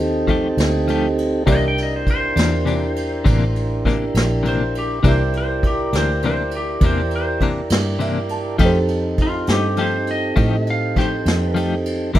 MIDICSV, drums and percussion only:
0, 0, Header, 1, 2, 480
1, 0, Start_track
1, 0, Tempo, 593472
1, 1191, Time_signature, 12, 3, 24, 8
1, 9862, End_track
2, 0, Start_track
2, 0, Title_t, "Drums"
2, 226, Note_on_c, 9, 36, 65
2, 226, Note_on_c, 9, 51, 53
2, 307, Note_off_c, 9, 36, 0
2, 307, Note_off_c, 9, 51, 0
2, 467, Note_on_c, 9, 51, 82
2, 485, Note_on_c, 9, 38, 107
2, 548, Note_off_c, 9, 51, 0
2, 566, Note_off_c, 9, 38, 0
2, 712, Note_on_c, 9, 51, 63
2, 793, Note_off_c, 9, 51, 0
2, 956, Note_on_c, 9, 51, 64
2, 1037, Note_off_c, 9, 51, 0
2, 1189, Note_on_c, 9, 51, 72
2, 1190, Note_on_c, 9, 36, 82
2, 1270, Note_off_c, 9, 51, 0
2, 1271, Note_off_c, 9, 36, 0
2, 1437, Note_on_c, 9, 51, 64
2, 1518, Note_off_c, 9, 51, 0
2, 1672, Note_on_c, 9, 36, 78
2, 1676, Note_on_c, 9, 51, 66
2, 1753, Note_off_c, 9, 36, 0
2, 1757, Note_off_c, 9, 51, 0
2, 1914, Note_on_c, 9, 51, 81
2, 1931, Note_on_c, 9, 38, 98
2, 1995, Note_off_c, 9, 51, 0
2, 2012, Note_off_c, 9, 38, 0
2, 2155, Note_on_c, 9, 51, 57
2, 2236, Note_off_c, 9, 51, 0
2, 2394, Note_on_c, 9, 51, 63
2, 2475, Note_off_c, 9, 51, 0
2, 2634, Note_on_c, 9, 36, 97
2, 2637, Note_on_c, 9, 51, 76
2, 2715, Note_off_c, 9, 36, 0
2, 2717, Note_off_c, 9, 51, 0
2, 2875, Note_on_c, 9, 51, 53
2, 2956, Note_off_c, 9, 51, 0
2, 3117, Note_on_c, 9, 36, 63
2, 3122, Note_on_c, 9, 51, 51
2, 3140, Note_on_c, 9, 38, 30
2, 3197, Note_off_c, 9, 36, 0
2, 3203, Note_off_c, 9, 51, 0
2, 3221, Note_off_c, 9, 38, 0
2, 3354, Note_on_c, 9, 51, 84
2, 3372, Note_on_c, 9, 38, 110
2, 3435, Note_off_c, 9, 51, 0
2, 3453, Note_off_c, 9, 38, 0
2, 3602, Note_on_c, 9, 51, 58
2, 3682, Note_off_c, 9, 51, 0
2, 3841, Note_on_c, 9, 51, 62
2, 3922, Note_off_c, 9, 51, 0
2, 4076, Note_on_c, 9, 36, 95
2, 4076, Note_on_c, 9, 51, 73
2, 4157, Note_off_c, 9, 36, 0
2, 4157, Note_off_c, 9, 51, 0
2, 4312, Note_on_c, 9, 51, 54
2, 4393, Note_off_c, 9, 51, 0
2, 4555, Note_on_c, 9, 36, 77
2, 4558, Note_on_c, 9, 51, 54
2, 4636, Note_off_c, 9, 36, 0
2, 4639, Note_off_c, 9, 51, 0
2, 4795, Note_on_c, 9, 51, 77
2, 4813, Note_on_c, 9, 38, 93
2, 4876, Note_off_c, 9, 51, 0
2, 4894, Note_off_c, 9, 38, 0
2, 5033, Note_on_c, 9, 51, 57
2, 5114, Note_off_c, 9, 51, 0
2, 5266, Note_on_c, 9, 51, 59
2, 5347, Note_off_c, 9, 51, 0
2, 5506, Note_on_c, 9, 51, 79
2, 5510, Note_on_c, 9, 36, 101
2, 5587, Note_off_c, 9, 51, 0
2, 5590, Note_off_c, 9, 36, 0
2, 5747, Note_on_c, 9, 51, 59
2, 5828, Note_off_c, 9, 51, 0
2, 5991, Note_on_c, 9, 36, 66
2, 5993, Note_on_c, 9, 51, 60
2, 6072, Note_off_c, 9, 36, 0
2, 6073, Note_off_c, 9, 51, 0
2, 6226, Note_on_c, 9, 51, 93
2, 6244, Note_on_c, 9, 38, 119
2, 6307, Note_off_c, 9, 51, 0
2, 6325, Note_off_c, 9, 38, 0
2, 6470, Note_on_c, 9, 51, 70
2, 6551, Note_off_c, 9, 51, 0
2, 6705, Note_on_c, 9, 51, 62
2, 6786, Note_off_c, 9, 51, 0
2, 6945, Note_on_c, 9, 51, 72
2, 6949, Note_on_c, 9, 36, 103
2, 7025, Note_off_c, 9, 51, 0
2, 7030, Note_off_c, 9, 36, 0
2, 7184, Note_on_c, 9, 51, 53
2, 7265, Note_off_c, 9, 51, 0
2, 7423, Note_on_c, 9, 51, 57
2, 7427, Note_on_c, 9, 36, 73
2, 7504, Note_off_c, 9, 51, 0
2, 7508, Note_off_c, 9, 36, 0
2, 7659, Note_on_c, 9, 51, 73
2, 7676, Note_on_c, 9, 38, 111
2, 7740, Note_off_c, 9, 51, 0
2, 7757, Note_off_c, 9, 38, 0
2, 7898, Note_on_c, 9, 51, 56
2, 7979, Note_off_c, 9, 51, 0
2, 8143, Note_on_c, 9, 51, 56
2, 8224, Note_off_c, 9, 51, 0
2, 8379, Note_on_c, 9, 51, 70
2, 8385, Note_on_c, 9, 36, 88
2, 8460, Note_off_c, 9, 51, 0
2, 8466, Note_off_c, 9, 36, 0
2, 8627, Note_on_c, 9, 51, 50
2, 8708, Note_off_c, 9, 51, 0
2, 8867, Note_on_c, 9, 36, 69
2, 8868, Note_on_c, 9, 51, 55
2, 8886, Note_on_c, 9, 38, 27
2, 8948, Note_off_c, 9, 36, 0
2, 8949, Note_off_c, 9, 51, 0
2, 8967, Note_off_c, 9, 38, 0
2, 9106, Note_on_c, 9, 51, 87
2, 9124, Note_on_c, 9, 38, 117
2, 9187, Note_off_c, 9, 51, 0
2, 9204, Note_off_c, 9, 38, 0
2, 9349, Note_on_c, 9, 51, 68
2, 9429, Note_off_c, 9, 51, 0
2, 9588, Note_on_c, 9, 51, 67
2, 9669, Note_off_c, 9, 51, 0
2, 9824, Note_on_c, 9, 51, 75
2, 9827, Note_on_c, 9, 36, 100
2, 9862, Note_off_c, 9, 36, 0
2, 9862, Note_off_c, 9, 51, 0
2, 9862, End_track
0, 0, End_of_file